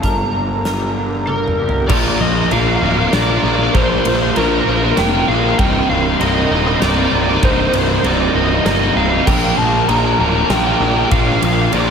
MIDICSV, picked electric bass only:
0, 0, Header, 1, 2, 480
1, 0, Start_track
1, 0, Tempo, 615385
1, 30, Time_signature, 3, 2, 24, 8
1, 9284, End_track
2, 0, Start_track
2, 0, Title_t, "Picked electric bass"
2, 0, Program_c, 0, 34
2, 27, Note_on_c, 0, 31, 72
2, 1449, Note_off_c, 0, 31, 0
2, 1479, Note_on_c, 0, 34, 100
2, 1666, Note_off_c, 0, 34, 0
2, 1719, Note_on_c, 0, 34, 79
2, 1907, Note_off_c, 0, 34, 0
2, 1960, Note_on_c, 0, 34, 93
2, 2147, Note_off_c, 0, 34, 0
2, 2200, Note_on_c, 0, 26, 95
2, 2387, Note_off_c, 0, 26, 0
2, 2440, Note_on_c, 0, 34, 88
2, 2627, Note_off_c, 0, 34, 0
2, 2677, Note_on_c, 0, 34, 87
2, 2866, Note_off_c, 0, 34, 0
2, 2921, Note_on_c, 0, 34, 104
2, 3107, Note_off_c, 0, 34, 0
2, 3165, Note_on_c, 0, 34, 88
2, 3350, Note_off_c, 0, 34, 0
2, 3406, Note_on_c, 0, 34, 98
2, 3591, Note_off_c, 0, 34, 0
2, 3649, Note_on_c, 0, 34, 90
2, 3832, Note_off_c, 0, 34, 0
2, 3885, Note_on_c, 0, 29, 97
2, 4070, Note_off_c, 0, 29, 0
2, 4122, Note_on_c, 0, 34, 98
2, 4307, Note_off_c, 0, 34, 0
2, 4360, Note_on_c, 0, 24, 99
2, 4546, Note_off_c, 0, 24, 0
2, 4603, Note_on_c, 0, 24, 85
2, 4788, Note_off_c, 0, 24, 0
2, 4840, Note_on_c, 0, 24, 93
2, 5025, Note_off_c, 0, 24, 0
2, 5077, Note_on_c, 0, 27, 95
2, 5264, Note_off_c, 0, 27, 0
2, 5316, Note_on_c, 0, 24, 95
2, 5503, Note_off_c, 0, 24, 0
2, 5557, Note_on_c, 0, 24, 92
2, 5743, Note_off_c, 0, 24, 0
2, 5793, Note_on_c, 0, 24, 105
2, 5981, Note_off_c, 0, 24, 0
2, 6028, Note_on_c, 0, 24, 82
2, 6217, Note_off_c, 0, 24, 0
2, 6268, Note_on_c, 0, 24, 90
2, 6457, Note_off_c, 0, 24, 0
2, 6510, Note_on_c, 0, 24, 86
2, 6698, Note_off_c, 0, 24, 0
2, 6747, Note_on_c, 0, 31, 93
2, 6935, Note_off_c, 0, 31, 0
2, 6984, Note_on_c, 0, 24, 90
2, 7174, Note_off_c, 0, 24, 0
2, 7232, Note_on_c, 0, 34, 110
2, 7418, Note_off_c, 0, 34, 0
2, 7468, Note_on_c, 0, 34, 80
2, 7655, Note_off_c, 0, 34, 0
2, 7710, Note_on_c, 0, 34, 95
2, 7896, Note_off_c, 0, 34, 0
2, 7946, Note_on_c, 0, 26, 90
2, 8133, Note_off_c, 0, 26, 0
2, 8187, Note_on_c, 0, 34, 97
2, 8373, Note_off_c, 0, 34, 0
2, 8424, Note_on_c, 0, 34, 99
2, 8611, Note_off_c, 0, 34, 0
2, 8670, Note_on_c, 0, 34, 105
2, 8855, Note_off_c, 0, 34, 0
2, 8907, Note_on_c, 0, 34, 84
2, 9092, Note_off_c, 0, 34, 0
2, 9146, Note_on_c, 0, 34, 91
2, 9284, Note_off_c, 0, 34, 0
2, 9284, End_track
0, 0, End_of_file